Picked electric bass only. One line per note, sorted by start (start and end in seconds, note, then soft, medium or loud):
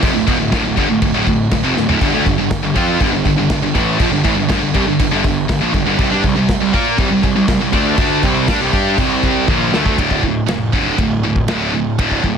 0.02 0.14 F1 medium
0.15 0.26 D1 medium
0.28 0.39 E1 medium
0.40 0.51 D1 medium
0.52 0.64 D1 loud
0.66 0.77 D1 medium
0.77 0.89 G1 medium
0.89 1.01 D1 medium
1.01 1.13 D1 medium
1.14 1.26 D1 medium
1.26 1.50 D1 medium
1.51 1.63 D1 medium
1.64 1.76 F1 medium
1.77 1.88 D1 medium
1.88 2.00 D1 loud
2.01 2.13 G1 loud
2.14 2.25 D2 medium
2.26 2.37 G1 medium
2.39 2.62 G1 medium
2.63 2.75 G1 medium
2.76 2.99 F2 medium
3.00 3.11 G1 loud
3.12 3.24 G1 medium
3.25 3.37 G1 medium
3.38 3.49 G1 medium
3.50 3.62 G1 medium
3.63 3.74 G1 medium
3.75 3.98 A1 medium
3.99 4.11 A#1 medium
4.11 4.23 G1 medium
4.24 4.36 A1 medium
4.36 4.48 G1 medium
4.49 4.61 G1 loud
4.61 4.73 G1 medium
4.74 4.85 C2 medium
4.86 4.98 G1 medium
5.00 5.11 G1 medium
5.12 5.24 G1 medium
5.24 5.47 G1 medium
5.49 5.61 G1 medium
5.62 5.73 A#1 medium
5.74 5.86 G1 medium
5.87 5.98 G1 loud
5.98 6.10 C2 loud
6.11 6.23 G2 medium
6.24 6.35 C2 medium
6.37 6.60 C2 medium
6.62 6.73 C2 medium
6.73 6.97 A#2 medium
6.98 7.10 C2 loud
7.11 7.22 C2 medium
7.23 7.35 C2 medium
7.36 7.47 C2 medium
7.48 7.60 C2 medium
7.60 7.72 C2 medium
7.72 7.96 D2 medium
7.98 8.21 D2 loud
8.23 8.46 C2 medium
8.48 8.60 G2 loud
8.60 8.72 C2 loud
8.73 8.96 G2 loud
8.98 9.45 C2 loud
9.48 9.71 A#1 medium
9.72 9.84 D2 medium
9.85 9.97 D2 loud
9.98 10.39 D1 medium
10.48 10.89 F1 medium
10.99 11.39 D1 medium
11.47 11.88 D1 medium
11.98 12.19 D1 medium
12.23 12.38 D1 medium